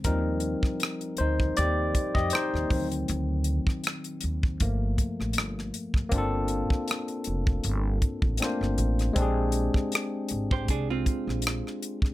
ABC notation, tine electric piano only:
X:1
M:4/4
L:1/16
Q:"Swing 16ths" 1/4=79
K:Gm
V:1 name="Tine electric piano"
[EB]6 [Ec]2 [Gd]3 [Ge] [Ec]3 z | z16 | [B,CDFA]12 [A,B,CDFc]4 | [_A,CDG_A]16 |]
V:2 name="Tine electric piano" clef=bass
[F,G,C]6 z8 [E,^F,C]2- | [E,^F,C]4 z4 [=F,A,B,]6 z2 | z16 | z16 |]